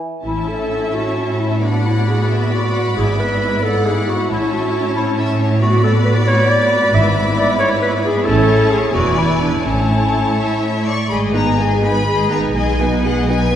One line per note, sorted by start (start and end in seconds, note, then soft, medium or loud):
0.24 0.68 A1 soft
0.24 2.93 A2 soft
0.24 1.58 C#4 soft
0.24 1.58 E4 soft
0.24 0.50 E4 soft
0.24 1.58 E5 soft
0.24 1.58 A5 soft
0.48 0.95 A4 soft
0.94 1.41 F#4 soft
0.94 1.58 C#5 soft
1.40 1.64 E4 soft
1.61 4.27 B3 soft
1.61 1.87 D4 soft
1.61 2.93 F#4 soft
1.61 4.27 D5 soft
1.61 2.30 F#5 soft
1.61 4.27 B5 soft
1.86 2.10 E4 soft
2.08 2.54 G#4 soft
2.30 2.52 E5 soft
2.52 2.96 F#4 soft
2.52 2.75 D5 soft
2.73 2.96 F#5 soft
2.97 3.39 G#1 soft
2.97 4.31 G#2 soft
2.97 5.58 E4 soft
2.97 3.21 G#4 medium
2.97 3.64 E5 soft
3.19 3.65 B4 medium
3.63 3.87 A4 medium
3.63 4.29 F#5 soft
3.85 4.10 G#4 medium
4.08 4.30 F#4 medium
4.30 4.72 A1 soft
4.30 6.94 A2 soft
4.30 5.58 C#4 soft
4.30 4.52 E4 medium
4.30 5.57 C#5 soft
4.30 4.96 E5 soft
4.30 5.57 A5 soft
4.53 4.96 F#4 medium
4.96 5.18 E4 medium
4.96 5.04 C#5 soft
5.18 5.39 E5 soft
5.40 5.61 C#5 soft
5.61 8.22 B3 medium
5.61 5.82 F#4 medium
5.61 6.90 F#4 medium
5.61 8.22 D5 medium
5.61 6.94 D5 soft
5.61 8.22 B5 soft
5.84 5.93 A4 medium
6.05 6.15 B4 medium
6.27 6.51 C#5 medium
6.49 6.96 D5 medium
6.93 7.35 G#1 soft
6.93 8.24 G#2 soft
6.93 8.22 E4 medium
6.93 8.24 B4 soft
6.93 7.38 E5 medium
7.39 7.48 D5 medium
7.59 7.69 C#5 medium
7.82 7.92 B4 medium
8.04 8.27 G#4 medium
8.25 8.68 A1 medium
8.25 8.91 A2 soft
8.25 8.91 C#4 medium
8.25 8.91 E4 soft
8.25 8.72 A4 medium
8.25 8.91 C#5 medium
8.25 8.95 C#5 medium
8.25 8.90 A5 soft
8.71 8.96 G#4 medium
8.94 9.38 E1 soft
8.94 9.65 E2 soft
8.94 9.66 B3 soft
8.94 9.64 E4 soft
8.94 9.20 F#4 medium
8.94 9.65 D5 soft
8.94 9.64 D5 medium
8.94 9.65 G#5 soft
9.18 9.40 E4 medium
9.41 9.65 D4 soft
9.65 10.10 A1 soft
9.65 10.86 A2 soft
9.65 10.86 A3 soft
9.65 10.36 C#4 soft
9.65 10.86 E4 soft
9.65 10.86 C#5 soft
9.65 10.31 C#5 soft
9.65 10.88 A5 soft
10.37 10.60 C#5 soft
10.37 10.60 E5 medium
10.61 10.85 E5 medium
10.85 11.10 D5 soft
10.85 11.10 C#6 medium
11.09 12.51 G#1 soft
11.09 12.51 G#2 soft
11.09 11.32 G#3 soft
11.09 12.51 G#4 soft
11.09 11.32 G#4 soft
11.09 11.33 G#4 soft
11.09 11.33 D#5 soft
11.09 11.18 B5 soft
11.34 11.58 B3 soft
11.34 11.58 D#4 soft
11.34 11.59 B4 soft
11.34 11.59 G#5 soft
11.34 11.58 A#5 medium
11.58 11.83 G#3 soft
11.58 11.83 G#4 soft
11.58 11.83 D#5 soft
11.58 11.83 G#5 medium
11.82 12.06 B3 soft
11.82 12.07 D#4 soft
11.82 12.08 B4 soft
11.82 12.08 G#5 soft
11.82 12.31 B5 medium
12.06 12.29 G#3 soft
12.06 12.29 G#4 soft
12.06 12.31 G#4 soft
12.06 12.30 D#5 soft
12.30 12.55 B3 soft
12.30 12.55 D#4 soft
12.30 12.56 B4 soft
12.30 12.56 G#5 soft
12.30 12.40 A#5 medium
12.55 13.56 B1 soft
12.55 13.56 B2 soft
12.55 12.78 G#3 soft
12.55 13.27 D#4 soft
12.55 12.78 G#4 soft
12.55 12.79 G#4 soft
12.55 12.79 D#5 soft
12.55 13.04 G#5 soft
12.79 13.04 B3 soft
12.79 13.04 D#4 soft
12.79 13.05 B4 soft
12.79 13.05 G#5 soft
13.04 13.29 G#3 soft
13.04 13.29 G#4 soft
13.04 13.29 D#5 soft
13.04 13.28 F#5 medium
13.29 13.54 B3 soft
13.29 13.54 D#4 soft
13.29 13.54 B4 soft
13.29 13.56 B4 soft
13.29 13.54 G#5 soft
13.29 13.56 G#5 medium